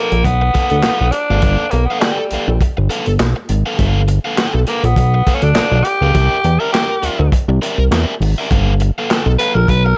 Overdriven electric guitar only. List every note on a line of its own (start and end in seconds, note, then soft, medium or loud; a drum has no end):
0.00 0.13 A4 medium
0.00 0.12 B4 medium
0.00 0.11 F5 medium
0.12 muted overdriven electric guitar stroke medium
0.25 muted overdriven electric guitar stroke soft
0.41 muted overdriven electric guitar stroke medium
0.54 0.75 A4 medium
0.54 0.71 B4 medium
0.54 0.70 F5 medium
0.71 muted overdriven electric guitar stroke soft
0.83 1.05 A4 medium
0.83 1.05 B4 medium
0.83 1.05 F5 medium
1.13 muted overdriven electric guitar stroke soft
1.31 1.42 A4 medium
1.31 1.42 B4 medium
1.31 1.43 F5 medium
1.43 1.64 A4 medium
1.43 1.64 B4 medium
1.43 1.65 F5 medium
1.74 muted overdriven electric guitar stroke soft
1.90 2.01 A4 soft
1.90 2.02 B4 medium
1.90 2.03 F5 medium
2.03 2.23 A4 medium
2.03 2.19 B4 medium
2.03 2.19 G5 medium
2.20 muted overdriven electric guitar stroke soft
2.33 2.49 A4 medium
2.33 2.48 B4 medium
2.33 2.48 F5 medium
2.49 muted overdriven electric guitar stroke soft
2.61 muted overdriven electric guitar stroke soft
2.77 muted overdriven electric guitar stroke soft
2.90 3.11 A4 medium
2.90 3.06 B4 medium
2.90 3.06 F5 medium
3.07 muted overdriven electric guitar stroke soft
3.20 muted overdriven electric guitar stroke soft
3.36 muted overdriven electric guitar stroke soft
3.66 3.77 A4 medium
3.66 3.77 B4 medium
3.66 3.78 F5 medium
3.78 3.99 A4 medium
3.78 4.00 B4 medium
3.78 4.00 F5 loud
4.08 muted overdriven electric guitar stroke medium
4.25 4.36 A4 medium
4.25 4.37 B4 medium
4.25 4.38 F5 medium
4.37 4.59 A4 medium
4.37 4.54 B4 medium
4.37 4.54 G5 medium
4.54 muted overdriven electric guitar stroke medium
4.67 4.85 A4 soft
4.67 4.84 B4 medium
4.67 4.83 F5 medium
4.84 muted overdriven electric guitar stroke soft
4.98 muted overdriven electric guitar stroke soft
5.14 muted overdriven electric guitar stroke soft
5.27 5.47 A4 medium
5.27 5.43 B4 medium
5.27 5.42 F5 medium
5.44 muted overdriven electric guitar stroke soft
5.56 5.77 A4 medium
5.56 5.77 B4 medium
5.56 5.78 F5 medium
5.86 muted overdriven electric guitar stroke soft
6.02 6.15 A4 soft
6.02 6.15 B4 soft
6.02 6.15 F5 medium
6.15 6.36 A#4 medium
6.15 6.36 D5 medium
6.15 6.36 E5 medium
6.45 muted overdriven electric guitar stroke soft
6.60 6.72 A#4 medium
6.60 6.73 D5 medium
6.60 6.74 E5 medium
6.73 6.95 A#4 medium
6.73 6.90 D5 medium
6.73 6.90 G5 medium
6.90 muted overdriven electric guitar stroke soft
7.03 7.20 A#4 medium
7.03 7.20 D5 medium
7.03 7.18 E5 medium
7.20 muted overdriven electric guitar stroke medium
7.32 muted overdriven electric guitar stroke soft
7.49 muted overdriven electric guitar stroke soft
7.62 7.83 A#4 medium
7.62 7.78 D5 medium
7.62 7.78 E5 medium
7.79 muted overdriven electric guitar stroke soft
7.92 8.13 A#4 medium
7.92 8.13 D5 medium
7.92 8.13 E5 medium
8.22 muted overdriven electric guitar stroke soft
8.38 8.50 A#4 soft
8.38 8.51 D5 medium
8.38 8.51 E5 medium
8.51 8.72 A4 medium
8.51 8.72 B4 medium
8.51 8.72 F5 medium
8.81 muted overdriven electric guitar stroke soft
8.98 9.09 A4 medium
8.98 9.10 B4 medium
8.98 9.11 F5 medium
9.11 9.31 A4 medium
9.11 9.27 B4 medium
9.11 9.27 G5 medium
9.27 muted overdriven electric guitar stroke soft
9.40 9.57 A4 medium
9.40 9.56 B4 medium
9.40 9.55 F5 medium
9.56 muted overdriven electric guitar stroke soft
9.69 muted overdriven electric guitar stroke soft
9.86 muted overdriven electric guitar stroke soft